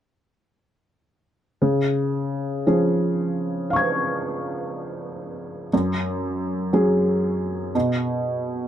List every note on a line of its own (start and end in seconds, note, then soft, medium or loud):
1.62 2.63 C#3 soft
2.67 5.68 F3 soft
2.67 5.69 C#4 soft
2.67 5.69 G#4 soft
3.70 5.69 F5 soft
3.70 5.70 C#6 soft
3.76 5.72 G#6 soft
5.73 6.70 F#2 soft
6.73 7.71 F#3 soft
6.73 7.71 C#4 soft
6.73 7.71 G#4 soft
7.75 8.68 B2 soft